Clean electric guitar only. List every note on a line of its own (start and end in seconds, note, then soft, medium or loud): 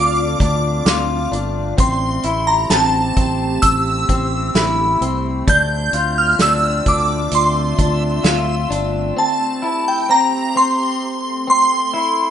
0.00 0.39 D4 medium
0.40 0.86 D4 medium
0.86 1.32 F4 medium
1.32 1.77 D4 medium
1.78 2.24 C4 medium
2.24 2.71 E4 medium
2.71 3.15 C4 medium
3.17 4.08 C4 medium
4.10 4.56 C4 medium
4.55 5.02 E4 medium
5.02 5.47 C4 medium
5.48 5.94 D4 medium
5.94 6.40 F4 medium
6.41 6.85 D4 medium
6.87 7.77 D4 medium
7.79 8.25 D4 medium
8.24 8.70 F4 medium
8.70 9.16 D4 medium
9.17 9.63 C4 medium
9.62 10.09 E4 medium
10.09 10.55 C4 medium
10.56 11.46 C4 medium
11.47 11.94 C4 medium
11.94 12.30 E4 medium